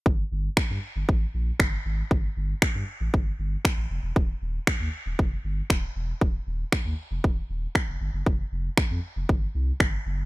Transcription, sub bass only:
X:1
M:4/4
L:1/16
Q:1/4=117
K:Fmix
V:1 name="Sub bass" clef=bass
G,,,2 G,,,2 G,, G,, z G,,, A,,,2 B,,,2 G,,,2 _A,,,2 | G,,,2 G,,,2 G,, G,, z A,,, G,,,2 G,,,2 z A,,, F,,, =E,,, | E,,,2 E,,,2 E,, E,, z E,,, F,,,2 G,,,2 E,,,2 =E,,,2 | E,,,2 E,,,2 E,, E,, z F,,, E,,,2 E,,,2 z F,,, G,,, ^F,,, |
F,,,2 F,,,2 F,, F,, z F,,, G,,,2 C,,2 G,,,2 ^F,,,2 |]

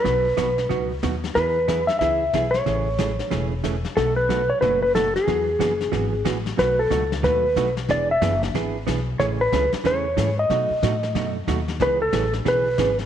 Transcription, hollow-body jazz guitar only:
X:1
M:4/4
L:1/8
Q:"Swing" 1/4=184
K:E
V:1 name="Hollow-body jazz guitar"
[B,,F,B,DF] z [B,,F,B,DF] z [B,,F,B,DF] z [B,,F,B,DF] z | [E,B,EG] z [E,B,EG] z [E,B,EG] z [E,B,EG] z | [C,E,A,CG] z [C,E,A,CG] z [C,E,A,CG] z [C,E,A,CG] z | [B,,F,A,DF] z [B,,F,A,DF] z [B,,F,A,DF] z [B,,F,A,DF] z |
[E,F,B,FG] z [E,F,B,FG] z [E,F,B,FG] z [E,F,B,FG] z | [B,,F,A,DF] z [B,,F,A,DF] z [B,,F,A,DF] z [B,,F,A,DF] z | [E,B,=DG] z [E,B,DG] z [E,B,DG] z [E,B,DG] z | [C,E,A,CG] z [C,E,A,CG] z [C,E,A,CG] z [C,E,A,CG] z |
[B,,F,A,DF] z [B,,F,A,DF] z [B,,F,A,DF] z [B,,F,A,DF] z | [C,E,B,CG] z [C,E,B,CG] z [C,E,B,CG] z [C,E,B,CG] z |]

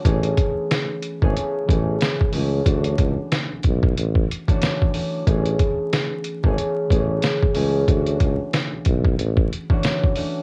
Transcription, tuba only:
X:1
M:4/4
L:1/16
Q:"Swing 16ths" 1/4=92
K:A
V:1 name="Tuba" clef=bass
A,,,2 z4 z G,,, z2 A,,,2 z2 C,,2 | D,,2 C,, z2 B,,, B,,,2 A,,,2 z6 | A,,,2 z4 z G,,, z2 A,,,2 z2 C,,2 | D,,2 C,, z2 B,,, B,,,2 A,,,2 z6 |]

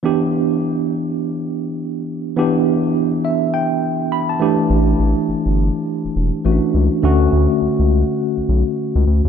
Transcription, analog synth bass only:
X:1
M:4/4
L:1/16
Q:"Swing 16ths" 1/4=103
K:Edor
V:1 name="Analog synth bass" clef=bass
z16 | z16 | A,,,2 A,,, z G,,, G,,,2 z2 E,,, E,,, z A,,, z C,, z | D,,2 D,, z C,, C,,2 z2 B,,, B,,, z2 C,, D,, ^D,, |]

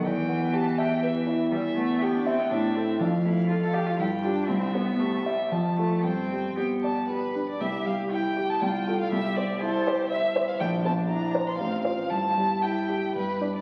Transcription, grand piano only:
X:1
M:3/4
L:1/8
Q:1/4=119
K:Ephr
V:1 name="Grand piano"
E,, B, G e B E | [K:C] E,, B, G e A,, [EA] | F,, A, A f G,, [FG] | C,, C G e F,, [FA] |
G,, G, G d G D | C,, G, E G C,, [FA] | C,, C E c e c | _B,,, C E c A,,, [Fc] |
G,, G, E G G,, [Dd] |]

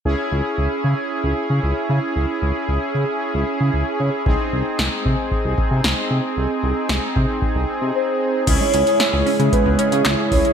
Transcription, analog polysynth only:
X:1
M:4/4
L:1/8
Q:1/4=114
K:C#m
V:1 name="Analog polysynth"
[CEG]8- | [CEG]8 | [^B,DG]8- | [^B,DG]8 |
[CEG]8 |]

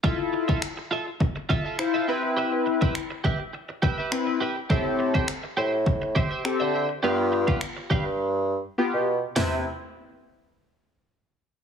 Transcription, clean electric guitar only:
X:1
M:4/4
L:1/16
Q:1/4=103
K:C
V:1 name="Clean electric guitar"
[FAe] z2 [FAe] z2 [FAe] z3 [FAe] [FAe] z [FAe] [GBe] z | [GBe] z2 [GBe] z2 [GBe] z3 [GBe] [GBe] z2 [GBe] z | [Gce] z2 [Gce] z2 [Gce] z3 [Gce] [Gce] z [Gce] [Gce] z | [GBf] z2 [GBf] z2 [GBf] z8 z |
[GBe] z12 z3 |]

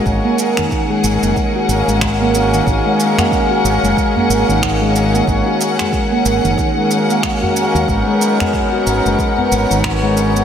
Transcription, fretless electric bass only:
X:1
M:4/4
L:1/16
Q:"Swing 16ths" 1/4=92
K:F#mix
V:1 name="Fretless electric bass" clef=bass
G,,, z4 z G,,, F,,, z2 G,,, G,,,4 z | G,,, z4 z G,,, F,,, z2 G,,, G,,,4 z | G,,, z4 z G,,, F,,, z6 z D,, | G,,, z4 z G,,, F,,, z2 G,,, G,,,4 z |]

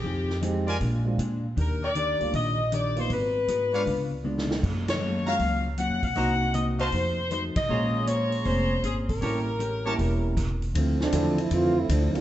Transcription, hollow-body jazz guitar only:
X:1
M:4/4
L:1/8
Q:"Swing" 1/4=157
K:Bbm
V:1 name="Hollow-body jazz guitar"
[F,CEA] z [F,CEA] z [B,,A,=DF] z [B,,A,DF] z | [E,=D=GB] z [E,DGB] z [E,DGB] z [E,DGB] z | [A,_CGB] z [A,CGB] z [D,C=DF] z [_D,C=DF] z | [G,B,DF] z [G,B,DF] z [G,B,DF] z [G,B,DF] z |
[C,B,EG] z [C,B,EG] z [F,=A,EG] z [F,A,EG] z | [B,DAc] z [B,DAc] z [B,DAc] z [B,DAc] z | [=A,^C=GB] z [A,CGB] z [A,CGB] z3 | [K:Dm] [D,F,CE] z [D,F,CE] z [D,F,CE] z [D,F,CE] z |]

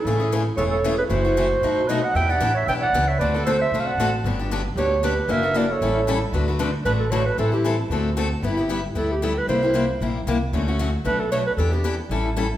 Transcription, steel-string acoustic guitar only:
X:1
M:4/4
L:1/8
Q:"Swing" 1/4=229
K:Amix
V:1 name="Steel-string acoustic guitar"
[C,E,A,C^G] [A,CG] [C,E,A,CG] z [C,E,A,CG] z [C,E,A,CG] z | [=C,E,A,EF] [A,EF] [C,E,A,EF] z [B,,F,A,^DF] z [B,,F,A,DF] z | [E,B,DG] [B,DG] [E,B,DG] z [E,B,DG] z [E,B,DG] z | [D,A,=CFA] [CFA] [D,A,CFA] z [D,A,CFA] z [D,A,CFA] z |
[D,F,B,DG] [B,DG] [D,F,B,DG] z [D,F,B,DG] z [D,F,B,DG] z | [E,^A,DF] [A,DF] [E,A,DF] z [E,G,CE=A] z [E,G,CEA] z | [K:D] [D,F,A,DFB] [A,DFB] [D,F,A,DFB] z [D,F,A,DFB] z [D,F,A,DFB] z | [E,G,=CEA] [CEA] [E,G,CEA] z [D,A,CFA] z [D,A,CFA] z |
[G,B,EG] [B,EG] [G,B,EG] z [G,B,EG] z [G,B,EG] z | [=C,G,_B,EG] [B,EG] [C,G,B,EG] z [C,G,B,EG] z [C,G,B,EG] z | [D,F,A,CF] [A,CF] [D,F,A,CF] z [B,,F,A,DF] z [B,,F,A,DF] z | [E,B,DG] [B,DG] [E,B,DG] z [E,G,CEA] z [E,G,CEA] z |]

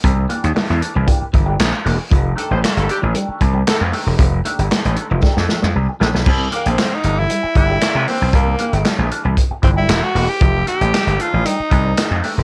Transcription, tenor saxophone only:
X:1
M:4/4
L:1/16
Q:1/4=116
K:Cmix
V:1 name="Tenor saxophone"
z16 | z16 | z16 | z2 B, C2 _E2 =E3 E4 C2 |
B,6 z4 C E2 ^F2 G- | G2 G4 F2 _E6 z2 |]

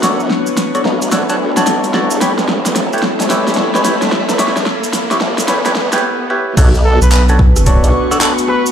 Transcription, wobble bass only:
X:1
M:4/4
L:1/16
Q:"Swing 16ths" 1/4=110
K:Bm
V:1 name="Wobble bass" clef=bass
F,,2 z4 B,,,2 D,,3 B,,,4 B,,, | A,,,2 G,,,3 z2 A,,,4 A,,,4 E,,- | E,,2 z4 A,,,2 E,,4 z4 | B,,,3 z6 B,,, z6 |]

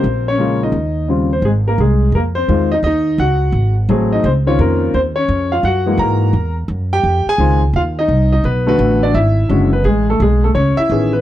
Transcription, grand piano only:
X:1
M:4/4
L:1/8
Q:"Swing" 1/4=171
K:Eb
V:1 name="Grand piano"
[Cc] [_D_d]2 [Ee]3 z [Cc] | [K:Fm] [A,A] [B,B] [A,A]2 [B,B] [Cc]2 [Ee] | [Ee]2 [_G_g]3 z2 [Ee] | [Cc] d [B,B]2 [Cc] [Dd]2 [Ff] |
[_G_g]2 [Bb]3 z2 [=G=g]- | [Gg] [Aa]2 z [Ff] [Ee]2 [Ee] | [=B,=B] B2 [=D=d] [=E=e]3 [B,B] | [^G,^G] [=A,=A] [G,G] [A,A] [^C^c] [=E=e]2 [=B,=B] |]
V:2 name="Grand piano"
z2 [_D,A,B,F]2 z2 [D,G,CF] z | [K:Fm] z6 [E,A,CF] z | z6 [_G,=A,C_A]2 | z [E,CDF]3 z4 |
z [_F,A,B,_G]3 z4 | z2 [E,A,CF] z4 z | z [=D,=A,=B,^F]3 z2 [D,^G,^CF] z | z6 [^D,=B,^C^G] z |]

